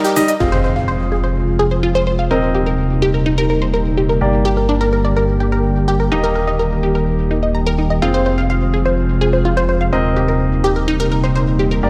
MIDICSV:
0, 0, Header, 1, 7, 480
1, 0, Start_track
1, 0, Tempo, 476190
1, 405, Time_signature, 4, 2, 24, 8
1, 11993, End_track
2, 0, Start_track
2, 0, Title_t, "Synth pluck"
2, 0, Program_c, 0, 84
2, 45, Note_on_c, 0, 67, 104
2, 159, Note_off_c, 0, 67, 0
2, 165, Note_on_c, 0, 63, 76
2, 244, Note_off_c, 0, 63, 0
2, 285, Note_on_c, 0, 75, 76
2, 364, Note_off_c, 0, 75, 0
2, 405, Note_on_c, 0, 65, 92
2, 484, Note_off_c, 0, 65, 0
2, 525, Note_on_c, 0, 72, 93
2, 604, Note_off_c, 0, 72, 0
2, 645, Note_on_c, 0, 72, 73
2, 724, Note_off_c, 0, 72, 0
2, 765, Note_on_c, 0, 77, 71
2, 844, Note_off_c, 0, 77, 0
2, 885, Note_on_c, 0, 72, 81
2, 964, Note_off_c, 0, 72, 0
2, 1126, Note_on_c, 0, 68, 73
2, 1173, Note_off_c, 0, 68, 0
2, 1245, Note_on_c, 0, 72, 74
2, 1324, Note_off_c, 0, 72, 0
2, 1605, Note_on_c, 0, 68, 96
2, 1684, Note_off_c, 0, 68, 0
2, 1725, Note_on_c, 0, 72, 74
2, 1772, Note_off_c, 0, 72, 0
2, 1845, Note_on_c, 0, 65, 92
2, 1924, Note_off_c, 0, 65, 0
2, 1966, Note_on_c, 0, 72, 94
2, 2044, Note_off_c, 0, 72, 0
2, 2085, Note_on_c, 0, 72, 73
2, 2164, Note_off_c, 0, 72, 0
2, 2206, Note_on_c, 0, 77, 73
2, 2284, Note_off_c, 0, 77, 0
2, 2326, Note_on_c, 0, 70, 78
2, 2404, Note_off_c, 0, 70, 0
2, 2565, Note_on_c, 0, 67, 73
2, 2613, Note_off_c, 0, 67, 0
2, 2685, Note_on_c, 0, 70, 73
2, 2764, Note_off_c, 0, 70, 0
2, 3045, Note_on_c, 0, 67, 97
2, 3124, Note_off_c, 0, 67, 0
2, 3165, Note_on_c, 0, 70, 73
2, 3213, Note_off_c, 0, 70, 0
2, 3285, Note_on_c, 0, 63, 95
2, 3364, Note_off_c, 0, 63, 0
2, 3405, Note_on_c, 0, 70, 97
2, 3484, Note_off_c, 0, 70, 0
2, 3525, Note_on_c, 0, 70, 73
2, 3604, Note_off_c, 0, 70, 0
2, 3645, Note_on_c, 0, 72, 75
2, 3724, Note_off_c, 0, 72, 0
2, 3765, Note_on_c, 0, 70, 77
2, 3844, Note_off_c, 0, 70, 0
2, 4005, Note_on_c, 0, 67, 72
2, 4053, Note_off_c, 0, 67, 0
2, 4125, Note_on_c, 0, 70, 73
2, 4204, Note_off_c, 0, 70, 0
2, 4485, Note_on_c, 0, 67, 100
2, 4564, Note_off_c, 0, 67, 0
2, 4606, Note_on_c, 0, 70, 71
2, 4653, Note_off_c, 0, 70, 0
2, 4725, Note_on_c, 0, 62, 95
2, 4804, Note_off_c, 0, 62, 0
2, 4845, Note_on_c, 0, 70, 94
2, 4924, Note_off_c, 0, 70, 0
2, 4966, Note_on_c, 0, 70, 74
2, 5044, Note_off_c, 0, 70, 0
2, 5086, Note_on_c, 0, 74, 75
2, 5164, Note_off_c, 0, 74, 0
2, 5206, Note_on_c, 0, 70, 78
2, 5284, Note_off_c, 0, 70, 0
2, 5445, Note_on_c, 0, 67, 75
2, 5493, Note_off_c, 0, 67, 0
2, 5566, Note_on_c, 0, 70, 74
2, 5644, Note_off_c, 0, 70, 0
2, 5926, Note_on_c, 0, 67, 98
2, 6004, Note_off_c, 0, 67, 0
2, 6045, Note_on_c, 0, 70, 72
2, 6093, Note_off_c, 0, 70, 0
2, 6165, Note_on_c, 0, 63, 96
2, 6244, Note_off_c, 0, 63, 0
2, 6285, Note_on_c, 0, 70, 95
2, 6364, Note_off_c, 0, 70, 0
2, 6406, Note_on_c, 0, 70, 72
2, 6484, Note_off_c, 0, 70, 0
2, 6525, Note_on_c, 0, 75, 72
2, 6604, Note_off_c, 0, 75, 0
2, 6646, Note_on_c, 0, 70, 81
2, 6724, Note_off_c, 0, 70, 0
2, 6886, Note_on_c, 0, 67, 74
2, 6933, Note_off_c, 0, 67, 0
2, 7006, Note_on_c, 0, 70, 74
2, 7084, Note_off_c, 0, 70, 0
2, 7366, Note_on_c, 0, 63, 72
2, 7444, Note_off_c, 0, 63, 0
2, 7486, Note_on_c, 0, 75, 71
2, 7564, Note_off_c, 0, 75, 0
2, 7606, Note_on_c, 0, 82, 75
2, 7720, Note_off_c, 0, 82, 0
2, 7726, Note_on_c, 0, 70, 99
2, 7804, Note_off_c, 0, 70, 0
2, 7845, Note_on_c, 0, 63, 72
2, 7893, Note_off_c, 0, 63, 0
2, 7965, Note_on_c, 0, 75, 73
2, 8013, Note_off_c, 0, 75, 0
2, 8085, Note_on_c, 0, 65, 93
2, 8164, Note_off_c, 0, 65, 0
2, 8206, Note_on_c, 0, 72, 94
2, 8284, Note_off_c, 0, 72, 0
2, 8326, Note_on_c, 0, 72, 73
2, 8404, Note_off_c, 0, 72, 0
2, 8446, Note_on_c, 0, 77, 71
2, 8524, Note_off_c, 0, 77, 0
2, 8565, Note_on_c, 0, 77, 80
2, 8613, Note_off_c, 0, 77, 0
2, 8805, Note_on_c, 0, 68, 75
2, 8853, Note_off_c, 0, 68, 0
2, 8925, Note_on_c, 0, 72, 75
2, 9004, Note_off_c, 0, 72, 0
2, 9285, Note_on_c, 0, 68, 96
2, 9364, Note_off_c, 0, 68, 0
2, 9405, Note_on_c, 0, 72, 74
2, 9453, Note_off_c, 0, 72, 0
2, 9525, Note_on_c, 0, 65, 96
2, 9604, Note_off_c, 0, 65, 0
2, 9646, Note_on_c, 0, 72, 101
2, 9724, Note_off_c, 0, 72, 0
2, 9766, Note_on_c, 0, 72, 74
2, 9844, Note_off_c, 0, 72, 0
2, 9885, Note_on_c, 0, 77, 76
2, 9964, Note_off_c, 0, 77, 0
2, 10005, Note_on_c, 0, 72, 77
2, 10052, Note_off_c, 0, 72, 0
2, 10245, Note_on_c, 0, 67, 75
2, 10293, Note_off_c, 0, 67, 0
2, 10365, Note_on_c, 0, 70, 71
2, 10444, Note_off_c, 0, 70, 0
2, 10725, Note_on_c, 0, 67, 97
2, 10804, Note_off_c, 0, 67, 0
2, 10845, Note_on_c, 0, 70, 73
2, 10892, Note_off_c, 0, 70, 0
2, 10965, Note_on_c, 0, 63, 96
2, 11044, Note_off_c, 0, 63, 0
2, 11085, Note_on_c, 0, 70, 97
2, 11164, Note_off_c, 0, 70, 0
2, 11205, Note_on_c, 0, 70, 73
2, 11284, Note_off_c, 0, 70, 0
2, 11325, Note_on_c, 0, 72, 74
2, 11404, Note_off_c, 0, 72, 0
2, 11445, Note_on_c, 0, 72, 78
2, 11493, Note_off_c, 0, 72, 0
2, 11685, Note_on_c, 0, 67, 73
2, 11733, Note_off_c, 0, 67, 0
2, 11806, Note_on_c, 0, 70, 74
2, 11884, Note_off_c, 0, 70, 0
2, 11993, End_track
3, 0, Start_track
3, 0, Title_t, "Grand piano"
3, 0, Program_c, 1, 0
3, 0, Note_on_c, 1, 55, 78
3, 0, Note_on_c, 1, 63, 70
3, 0, Note_on_c, 1, 70, 85
3, 126, Note_off_c, 1, 55, 0
3, 126, Note_off_c, 1, 63, 0
3, 126, Note_off_c, 1, 70, 0
3, 165, Note_on_c, 1, 55, 94
3, 165, Note_on_c, 1, 75, 101
3, 166, Note_on_c, 1, 63, 83
3, 291, Note_off_c, 1, 55, 0
3, 291, Note_off_c, 1, 63, 0
3, 291, Note_off_c, 1, 75, 0
3, 406, Note_on_c, 1, 60, 67
3, 406, Note_on_c, 1, 68, 63
3, 406, Note_on_c, 1, 77, 75
3, 2297, Note_off_c, 1, 60, 0
3, 2297, Note_off_c, 1, 68, 0
3, 2297, Note_off_c, 1, 77, 0
3, 2325, Note_on_c, 1, 60, 70
3, 2325, Note_on_c, 1, 70, 64
3, 2325, Note_on_c, 1, 75, 74
3, 4216, Note_off_c, 1, 60, 0
3, 4216, Note_off_c, 1, 70, 0
3, 4216, Note_off_c, 1, 75, 0
3, 4245, Note_on_c, 1, 58, 70
3, 4245, Note_on_c, 1, 67, 65
3, 4245, Note_on_c, 1, 74, 76
3, 6136, Note_off_c, 1, 58, 0
3, 6136, Note_off_c, 1, 67, 0
3, 6136, Note_off_c, 1, 74, 0
3, 6166, Note_on_c, 1, 58, 72
3, 6166, Note_on_c, 1, 67, 64
3, 6166, Note_on_c, 1, 75, 76
3, 8057, Note_off_c, 1, 58, 0
3, 8057, Note_off_c, 1, 67, 0
3, 8057, Note_off_c, 1, 75, 0
3, 8086, Note_on_c, 1, 60, 71
3, 8086, Note_on_c, 1, 68, 63
3, 8086, Note_on_c, 1, 77, 77
3, 9977, Note_off_c, 1, 60, 0
3, 9977, Note_off_c, 1, 68, 0
3, 9977, Note_off_c, 1, 77, 0
3, 10005, Note_on_c, 1, 60, 70
3, 10005, Note_on_c, 1, 70, 64
3, 10005, Note_on_c, 1, 75, 78
3, 11897, Note_off_c, 1, 60, 0
3, 11897, Note_off_c, 1, 70, 0
3, 11897, Note_off_c, 1, 75, 0
3, 11925, Note_on_c, 1, 58, 71
3, 11925, Note_on_c, 1, 67, 65
3, 11925, Note_on_c, 1, 74, 80
3, 11993, Note_off_c, 1, 58, 0
3, 11993, Note_off_c, 1, 67, 0
3, 11993, Note_off_c, 1, 74, 0
3, 11993, End_track
4, 0, Start_track
4, 0, Title_t, "Analog synth pad"
4, 0, Program_c, 2, 89
4, 405, Note_on_c, 2, 53, 73
4, 405, Note_on_c, 2, 65, 86
4, 406, Note_on_c, 2, 48, 81
4, 406, Note_on_c, 2, 56, 74
4, 2306, Note_off_c, 2, 48, 0
4, 2306, Note_off_c, 2, 53, 0
4, 2306, Note_off_c, 2, 65, 0
4, 2307, Note_off_c, 2, 56, 0
4, 2325, Note_on_c, 2, 48, 82
4, 2325, Note_on_c, 2, 55, 71
4, 2325, Note_on_c, 2, 58, 73
4, 2325, Note_on_c, 2, 63, 90
4, 4226, Note_off_c, 2, 48, 0
4, 4226, Note_off_c, 2, 63, 0
4, 4245, Note_on_c, 2, 50, 79
4, 4245, Note_on_c, 2, 67, 90
4, 6146, Note_off_c, 2, 50, 0
4, 6166, Note_on_c, 2, 51, 82
4, 8045, Note_off_c, 2, 55, 0
4, 8045, Note_off_c, 2, 58, 0
4, 8047, Note_off_c, 2, 67, 0
4, 8066, Note_off_c, 2, 51, 0
4, 8085, Note_on_c, 2, 53, 74
4, 8085, Note_on_c, 2, 56, 73
4, 8085, Note_on_c, 2, 65, 90
4, 8086, Note_on_c, 2, 48, 80
4, 9986, Note_off_c, 2, 48, 0
4, 9986, Note_off_c, 2, 53, 0
4, 9986, Note_off_c, 2, 56, 0
4, 9986, Note_off_c, 2, 65, 0
4, 10005, Note_on_c, 2, 58, 74
4, 10006, Note_on_c, 2, 48, 80
4, 10006, Note_on_c, 2, 55, 74
4, 10006, Note_on_c, 2, 63, 91
4, 11906, Note_off_c, 2, 48, 0
4, 11906, Note_off_c, 2, 63, 0
4, 11925, Note_on_c, 2, 67, 89
4, 11926, Note_on_c, 2, 50, 81
4, 11993, Note_off_c, 2, 50, 0
4, 11993, Note_off_c, 2, 55, 0
4, 11993, Note_off_c, 2, 58, 0
4, 11993, Note_off_c, 2, 67, 0
4, 11993, End_track
5, 0, Start_track
5, 0, Title_t, "Detuned saw bass"
5, 0, Program_c, 3, 39
5, 406, Note_on_c, 3, 29, 81
5, 2302, Note_off_c, 3, 29, 0
5, 2325, Note_on_c, 3, 27, 83
5, 4221, Note_off_c, 3, 27, 0
5, 4245, Note_on_c, 3, 31, 82
5, 6141, Note_off_c, 3, 31, 0
5, 6165, Note_on_c, 3, 27, 82
5, 8061, Note_off_c, 3, 27, 0
5, 8085, Note_on_c, 3, 29, 83
5, 9982, Note_off_c, 3, 29, 0
5, 10006, Note_on_c, 3, 27, 84
5, 11902, Note_off_c, 3, 27, 0
5, 11925, Note_on_c, 3, 31, 85
5, 11993, Note_off_c, 3, 31, 0
5, 11993, End_track
6, 0, Start_track
6, 0, Title_t, "Impact"
6, 0, Program_c, 4, 103
6, 406, Note_on_c, 4, 60, 67
6, 2326, Note_off_c, 4, 60, 0
6, 11993, End_track
7, 0, Start_track
7, 0, Title_t, "Drums"
7, 46, Note_on_c, 9, 42, 27
7, 46, Note_on_c, 9, 82, 32
7, 146, Note_off_c, 9, 42, 0
7, 147, Note_off_c, 9, 82, 0
7, 165, Note_on_c, 9, 46, 87
7, 166, Note_on_c, 9, 82, 81
7, 266, Note_off_c, 9, 46, 0
7, 267, Note_off_c, 9, 82, 0
7, 285, Note_on_c, 9, 42, 55
7, 286, Note_on_c, 9, 82, 34
7, 386, Note_off_c, 9, 42, 0
7, 387, Note_off_c, 9, 82, 0
7, 405, Note_on_c, 9, 49, 75
7, 506, Note_off_c, 9, 49, 0
7, 11993, End_track
0, 0, End_of_file